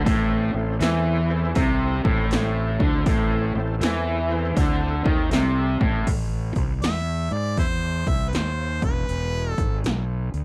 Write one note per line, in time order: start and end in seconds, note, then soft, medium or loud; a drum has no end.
0.05 0.52 A1 medium
0.05 0.52 A2 loud
0.05 0.45 C4 loud
0.05 0.46 E4 loud
0.05 0.46 A4 medium
0.05 0.46 C5 loud
0.05 kick loud
0.05 open hi-hat medium
0.53 0.79 A1 medium
0.53 0.75 A2 medium
0.53 0.77 C4 medium
0.53 0.77 E4 medium
0.53 0.77 A4 medium
0.53 0.77 C5 medium
0.80 1.52 E2 medium
0.80 1.55 E3 loud
0.80 1.21 C4 medium
0.80 1.21 E4 medium
0.80 1.22 A4 medium
0.80 1.22 C5 medium
0.80 snare loud
0.80 open hi-hat medium
1.29 1.51 C4 loud
1.29 1.51 E4 loud
1.29 1.51 A4 loud
1.29 1.52 C5 loud
1.55 2.02 C2 medium
1.55 2.04 C3 loud
1.55 1.96 C4 loud
1.55 1.96 E4 loud
1.55 1.96 A4 loud
1.55 1.97 C5 loud
1.55 kick loud
1.55 open hi-hat medium
2.04 2.76 A1 loud
2.04 2.78 A2 loud
2.04 2.26 C4 medium
2.04 2.26 E4 medium
2.04 2.26 A4 medium
2.04 2.27 C5 medium
2.04 kick loud
2.31 2.71 C4 medium
2.31 2.71 E4 medium
2.31 2.71 A4 medium
2.31 2.72 C5 medium
2.31 snare loud
2.31 open hi-hat medium
2.79 3.05 D2 medium
2.79 3.06 D3 loud
2.79 3.01 C4 medium
2.79 3.02 E4 medium
2.79 3.02 A4 medium
2.79 3.02 C5 medium
2.79 kick loud
3.05 3.52 A1 medium
3.05 3.54 A2 loud
3.05 3.46 C4 loud
3.05 3.46 E4 medium
3.05 3.46 A4 medium
3.05 3.46 C5 loud
3.05 kick loud
3.05 open hi-hat medium
3.53 3.80 A1 medium
3.53 3.76 A2 medium
3.53 3.76 C4 medium
3.53 3.76 E4 medium
3.53 3.76 A4 medium
3.53 3.76 C5 medium
3.78 4.52 E2 medium
3.78 4.56 E3 loud
3.78 4.20 C4 medium
3.78 4.20 E4 medium
3.78 4.20 A4 medium
3.78 4.21 C5 medium
3.78 open hi-hat medium
3.83 snare loud
4.28 4.51 C4 loud
4.28 4.51 E4 loud
4.28 4.51 A4 loud
4.28 4.52 C5 loud
4.54 5.02 D2 medium
4.54 5.04 D3 loud
4.54 4.95 C4 loud
4.54 4.95 E4 loud
4.54 4.96 A4 loud
4.54 4.96 C5 loud
4.54 kick loud
4.54 open hi-hat medium
5.03 5.30 D#2 medium
5.03 5.30 D#3 loud
5.03 5.25 C4 medium
5.03 5.26 A4 medium
5.03 5.26 C5 medium
5.03 5.26 E5 medium
5.03 kick loud
5.28 5.77 C2 medium
5.28 5.79 C3 loud
5.28 5.70 C4 medium
5.28 5.70 E4 medium
5.28 5.71 A4 medium
5.28 5.71 D5 medium
5.28 open hi-hat medium
5.33 snare loud
5.78 6.05 A1 medium
5.78 6.06 A2 loud
5.78 6.01 C4 medium
5.78 6.01 E4 medium
5.78 6.01 A4 medium
5.78 6.02 C5 medium
5.78 kick loud
6.07 6.53 A1 medium
6.07 kick medium
6.07 open hi-hat medium
6.07 crash medium
6.56 6.80 C2 medium
6.56 kick medium
6.56 open hi-hat soft
6.82 7.28 E2 medium
6.82 7.34 E5 medium
6.82 snare loud
6.82 open hi-hat medium
7.31 7.56 G#2 medium
7.31 7.58 D5 medium
7.31 open hi-hat soft
7.57 8.03 E2 medium
7.57 7.67 E4 medium
7.57 8.10 C5 medium
7.57 kick medium
7.57 open hi-hat medium
8.07 8.31 C2 medium
8.07 8.30 E5 medium
8.07 kick medium
8.07 open hi-hat soft
8.28 8.36 B4 medium
8.33 8.79 D#2 medium
8.33 8.83 C5 medium
8.33 snare loud
8.33 open hi-hat medium
8.82 9.07 E1 medium
8.82 9.51 B4 medium
8.82 kick medium
8.82 open hi-hat soft
9.09 9.55 E1 medium
9.09 open hi-hat medium
9.51 9.81 A4 medium
9.58 9.83 G#1 medium
9.58 kick medium
9.58 open hi-hat soft
9.84 10.30 B1 medium
9.84 snare loud
9.84 open hi-hat medium
10.34 10.44 D2 medium
10.34 open hi-hat soft